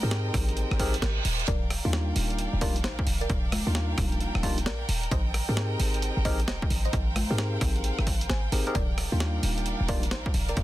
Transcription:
Already playing: A#4 C5 D#5 G5
0.03 G#2 C4 D#4 G4 G#4 A#4
0.11 snare, closed hi-hat
0.34 G#1, kick, cross-stick, open hi-hat
0.49 closed hi-hat
0.57 closed hi-hat, reverse cymbal
0.71 G#1, cross-stick
0.80 C4 D#4 G4 G#4 A#4, kick, open hi-hat
0.94 closed hi-hat
1.02 G#1 G4 A#4, snare, closed hi-hat
1.25 D#1, open hi-hat
1.40 closed hi-hat
1.48 D#1 A#4 D5 F5 G5, kick, closed hi-hat
1.70 cross-stick, open hi-hat
1.85 D#2 G3 A#3 D4 D#4 F4
1.93 snare, closed hi-hat
2.16 D#1, open hi-hat
2.30 closed hi-hat
2.39 closed hi-hat
2.53 D#1
2.61 G3 A#3 D4 D#4 F4 A#4 D5, kick, open hi-hat
2.76 closed hi-hat
2.84 A#1 D#4 C5, snare, closed hi-hat
2.99 kick
3.07 D#1, open hi-hat
3.21 A#4 D5, closed hi-hat
3.30 D#1, kick, closed hi-hat
3.52 cross-stick, open hi-hat, high conga
3.67 D#2 G3 A#3 D4 D#4 F4
3.75 snare, closed hi-hat
3.98 D#1, kick, cross-stick, open hi-hat
4.12 closed hi-hat
4.21 closed hi-hat
4.35 D#1, cross-stick
4.43 G3 A#3 D4 D#4 F4, kick, open hi-hat
4.58 closed hi-hat
4.66 A#1 A#4 D5, snare, closed hi-hat
4.89 D#1, open hi-hat
5.03 closed hi-hat
5.11 G#1 C5 D#5, kick, closed hi-hat
5.34 cross-stick, open hi-hat
5.49 G#2 C4 D#4 G4 G#4 A#4
5.57 snare, closed hi-hat
5.80 G#1, open hi-hat
5.94 closed hi-hat
6.02 closed hi-hat
6.17 G#1
6.25 C4 D#4 G4 G#4 A#4 C5 D#5, kick, open hi-hat
6.40 closed hi-hat
6.48 D#1 C5 D#5, snare, closed hi-hat
6.62 kick
6.70 G#1, open hi-hat
6.85 C5 D#5, closed hi-hat
6.93 G#1 F5, kick, closed hi-hat
7.16 cross-stick, open hi-hat, high conga
7.30 G#2 C4 D#4 G4 G#4 A#4
7.38 snare, closed hi-hat
7.61 G#1, kick, cross-stick, open hi-hat
7.76 closed hi-hat
7.84 closed hi-hat
7.99 G#1, cross-stick
8.07 kick, open hi-hat
8.21 closed hi-hat
8.30 G#1 C5 G#5, snare, closed hi-hat
8.52 G#1 C4 D#4 G4 G#4 A#4, open hi-hat
8.67 C4 D#4 G4 G#4 A#4, closed hi-hat
8.75 D#1 A#4 D5 F5, kick, closed hi-hat
8.98 cross-stick, open hi-hat
9.12 D#2 G3 A#3 D4 D#4 F4
9.20 snare, closed hi-hat
9.43 D#1, open hi-hat
9.58 closed hi-hat
9.66 closed hi-hat
9.80 D#1
9.88 G3 A#3 D4 D#4 F4 A#4 D5, kick, open hi-hat
10.03 closed hi-hat
10.11 A#1 D#4 C5, snare, closed hi-hat
10.26 kick
10.34 D#1, open hi-hat
10.49 A#4 D5, closed hi-hat
10.57 D#1, kick, closed hi-hat

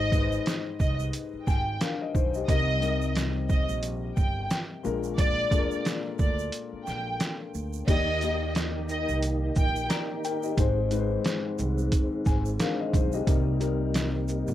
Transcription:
Already playing: G#1 G#2 G#3 D#4 G4 C5 D#5
0.12 G#2 G#3 D#4 B4, kick, closed hi-hat, shaker
0.21 C5
0.32 shaker
0.46 snare, closed hi-hat, shaker
0.79 C2 D#5, kick, shaker
0.99 shaker
1.13 closed hi-hat, shaker
1.33 muted upright bass stroke
1.46 G#1 G5 G#5, kick, snare, shaker
1.81 D4 A#4 F5, snare, closed hi-hat, shaker
2.02 D#5
2.14 B1 D#4 C5, kick, shaker
2.34 G4 D#5, shaker
2.48 C2 C3 G3 D#4 A#4 D#5, kick, closed hi-hat, shaker
2.80 C3 G3 D#4 A#4, closed hi-hat, shaker
3.02 shaker
3.15 snare, closed hi-hat, shaker
3.49 D#5, kick, shaker
3.69 A#1, shaker
3.83 closed hi-hat, shaker
4.16 G1 G5, kick, shaker
4.50 snare, closed hi-hat, shaker
4.83 A#1 A#2 G#3 D4 A#4, shaker
5.03 shaker
5.18 D5, kick, closed hi-hat, shaker
5.50 A#2 G#3 D4 A4, kick, closed hi-hat, shaker
5.58 A#4
5.71 shaker
5.85 snare, closed hi-hat, shaker
6.19 D2 D5, kick, shaker
6.39 shaker
6.52 closed hi-hat, shaker
6.73 muted upright bass stroke
6.85 A#1 G5, snare, shaker
7.20 snare, closed hi-hat, shaker
7.55 D2, shaker
7.73 shaker
7.87 D#2 D#3 A#3 D#4 G4 D5 D#5, kick, closed hi-hat, crash, shaker
8.21 D#3 A#3 G4 D#5, closed hi-hat, shaker
8.55 snare, closed hi-hat, shaker
8.89 D#5, shaker
9.08 C2, shaker
9.22 closed hi-hat, shaker
9.55 A#1 G5, kick, shaker
9.76 shaker
9.89 D5 A#5, snare, closed hi-hat, shaker
10.24 A#4 G5, closed hi-hat, shaker
10.43 G4 D#5, shaker
10.57 G#1 G#2 G#3 C4 D#4 C5, kick, closed hi-hat, shaker
10.91 G#2 G#3 D#4 B4, closed hi-hat, shaker
10.99 C5
11.24 snare, closed hi-hat, shaker
11.58 C2, shaker
11.78 shaker
11.92 kick, closed hi-hat, shaker
12.12 muted upright bass stroke
12.25 G#1 G#5, kick, snare, shaker
12.45 shaker
12.60 D4 A#4 F5, snare, closed hi-hat, shaker
12.80 D#5
12.93 B1 D#4 C5, kick, closed hi-hat, shaker
13.12 G4 D#5, shaker
13.26 C2 C3 G3 A#3 D#4 A#4, kick, closed hi-hat, shaker
13.59 C3 G3 D#4 A#4, closed hi-hat, shaker
13.94 snare, closed hi-hat, shaker
14.28 shaker
14.47 A#1, shaker

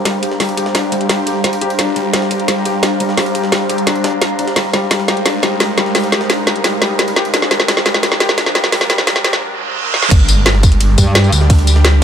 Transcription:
Already playing: G1 G3 D4 G4 C5 F5 A#5
0.05 G3, snare, closed hi-hat, ride
0.23 G4, closed hi-hat, ride
0.32 snare
0.40 G3, snare, closed hi-hat, open hi-hat
0.49 ride
0.57 G4, closed hi-hat, ride
0.66 snare
0.75 D4, snare, closed hi-hat, ride
0.92 D2 G3, closed hi-hat, ride
1.01 closed hi-hat
1.09 G3, snare, closed hi-hat, ride
1.27 G4, closed hi-hat, ride
1.44 G3, snare, closed hi-hat, ride
1.53 ride
1.61 G4, closed hi-hat
1.70 ride
1.79 G1 D4, snare, closed hi-hat, ride
1.96 D2 G3, closed hi-hat, ride
2.13 G3, snare, closed hi-hat, ride
2.22 snare
2.31 G1 G4, closed hi-hat, ride
2.40 closed hi-hat
2.48 G3, snare, closed hi-hat, ride
2.65 G4, closed hi-hat, ride
2.83 D4, snare, closed hi-hat, ride
3.00 G3, closed hi-hat, ride
3.09 snare
3.17 G3, snare, closed hi-hat, open hi-hat
3.26 ride
3.35 G4, closed hi-hat, ride
3.44 snare
3.52 G3, snare, closed hi-hat, ride
3.69 D2 G4, closed hi-hat, ride
3.78 closed hi-hat
3.87 D4, snare, closed hi-hat, ride
3.96 ride
4.04 D4, snare, closed hi-hat, ride
4.21 D4, snare, closed hi-hat, ride
4.39 D4, closed hi-hat, ride
4.47 snare, closed hi-hat
4.56 G#1 G3 G#3 D#4 A#4, snare, closed hi-hat, ride, riser
4.73 D#1 G3, snare, closed hi-hat, ride
4.91 G3, snare, closed hi-hat, ride
5.00 snare
5.08 G#1 G4, snare, closed hi-hat, ride
5.17 closed hi-hat
5.25 D4, snare, closed hi-hat, ride
5.43 G3, snare, closed hi-hat, ride
5.60 G3, snare, closed hi-hat, ride
5.78 G3, snare, closed hi-hat, ride
5.86 snare
5.95 G3, snare, closed hi-hat, open hi-hat
6.04 ride
6.12 G4, snare, closed hi-hat, ride
6.21 snare
6.30 D4, snare, closed hi-hat, ride
6.47 G3, snare, closed hi-hat, ride
6.56 closed hi-hat
6.64 G3, snare, closed hi-hat, ride
6.82 G3, snare, closed hi-hat, ride
6.99 G3, snare, closed hi-hat, ride
7.08 ride
7.16 G4, snare, closed hi-hat
7.25 ride
7.34 D4, snare, closed hi-hat, ride
7.42 snare
7.51 G3, snare, closed hi-hat, ride
7.60 snare
7.68 G3, snare, closed hi-hat, ride
7.77 snare
7.86 G#1 G3, snare, closed hi-hat, ride
7.94 snare, closed hi-hat
8.03 G3, snare, closed hi-hat, ride
8.12 snare
8.20 G4, snare, closed hi-hat, ride
8.29 snare
8.38 D4, snare, closed hi-hat, ride
8.46 snare
8.55 G3, snare, closed hi-hat, ride
8.64 snare
8.72 G3, snare, closed hi-hat, open hi-hat
8.81 snare, ride
8.90 G3, snare, closed hi-hat, ride
8.98 snare
9.07 G3, snare, closed hi-hat, ride
9.16 snare
9.24 G#1 G4, snare, closed hi-hat, ride
9.33 snare, closed hi-hat
9.42 reverse cymbal
9.94 snare
10.03 snare
10.11 G1 G3 D4 G4, kick, closed hi-hat, ride, crash, sub drop
10.29 closed hi-hat, ride, tambourine
10.46 snare, closed hi-hat, ride
10.55 snare
10.63 kick, closed hi-hat, ride, tambourine
10.72 closed hi-hat
10.80 closed hi-hat, ride
10.98 G2, kick, closed hi-hat, ride, tambourine
11.15 snare, closed hi-hat, ride
11.24 tambourine
11.32 D2, closed hi-hat, ride, tambourine
11.41 snare
11.50 kick, closed hi-hat, open hi-hat
11.59 ride
11.67 closed hi-hat, ride, tambourine
11.76 snare
11.85 snare, closed hi-hat, ride
11.92 C#2

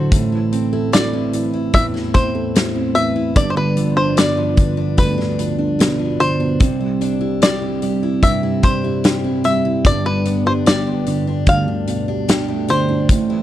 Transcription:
Already playing: A1 A2 D3 F#3 A3 F#4 A4 C5
0.12 A1 A2, kick, closed hi-hat
0.32 E3 E4
0.52 C4, closed hi-hat
0.73 E4 A4
0.92 E4 B4 D5, snare, closed hi-hat
1.13 C4 E4
1.33 E3, closed hi-hat
1.53 E4
1.73 E2 A2 E3 E5, kick, closed hi-hat
1.94 E3 E4, snare
2.14 C4 C5, kick, closed hi-hat
2.35 E4 A4
2.55 E4, snare, closed hi-hat
2.75 C4 E4
2.95 E3 B4 E5, closed hi-hat
3.16 E4
3.36 G1 G2 D5, kick, closed hi-hat
3.50 C5
3.56 D3 D4 B4
3.77 F3 B3, closed hi-hat
3.96 D4 C5
4.17 B3 B4 D5, snare, closed hi-hat
4.37 F3 D4
4.57 D3 B4, kick, closed hi-hat
4.77 B3 D4
4.97 D2 G2 D3 B4, kick, closed hi-hat
5.17 D3 D4, snare
5.38 F3, closed hi-hat
5.58 D4
5.79 B2 B4, snare, closed hi-hat
5.99 F3 D4
6.19 D3 C5, closed hi-hat
6.40 B3 D4
6.60 C2 C3, kick, closed hi-hat
6.81 G3 E4
7.01 C4 D4, closed hi-hat
7.21 E4 G4
7.42 E4 G4 D5, snare, closed hi-hat
7.62 C4 E4
7.82 G3 G4, closed hi-hat
8.02 E4
8.22 G2 C3 G3 E5, kick, closed hi-hat
8.42 G3 E4
8.63 C4 D4 C5, kick, closed hi-hat
8.84 E4 G4
9.04 E4 G4, snare, closed hi-hat
9.24 C4 E4
9.44 G3 G4 E5, closed hi-hat
9.65 E4
9.85 G1 G2 D5, kick, closed hi-hat
10.05 D3 D4 B4
10.25 B3, closed hi-hat
10.46 D4 G4 C5
10.66 D4 G4 D5, snare, closed hi-hat
10.87 B3 D4
11.06 D3 G4, closed hi-hat
11.27 D4
11.46 D2 G2 D3 F5, kick, closed hi-hat
11.68 D3 D4
11.87 B2, closed hi-hat
12.08 D4 G4
12.28 D4 G4, snare, closed hi-hat
12.48 A3 D4
12.68 D3 G4 C5, closed hi-hat
12.89 D4
13.09 A1 A2, kick, closed hi-hat
13.30 E3 E4

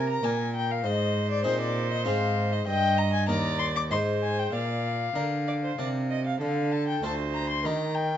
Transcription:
Already playing: C3 A#4
0.09 A#5
0.23 A#2 A#3 G4 A#4 G#5
0.56 G5
0.71 F5
0.84 G#2 C5 D#5
1.31 D5
1.44 A#2 C4 D#4 G#4 C5
1.61 D5
1.92 D#5
2.05 G#2 C4 D#4 G#4 F5
2.52 D#5
2.67 G2 D#5 G5
2.98 A#5
3.13 G#5
3.28 D#2 A#3 D#4 A#4 D5 A#5
3.59 C6
3.76 D6
3.91 G#2 G#3 D#4 C5 C6
4.22 G#5
4.39 G5
4.52 A#2 D5 F5
5.15 D3 D4 A#4
5.48 D5
5.64 C5
5.79 C3 D4 A#4 D5
6.10 D#5
6.26 F5
6.41 D3 A4 F5
6.72 A5
6.88 G5
7.03 D2 F4 A4 C5 A5
7.34 A#5
7.50 C6
7.64 D#3 D#4 G4 A#4 A#5
7.95 G5

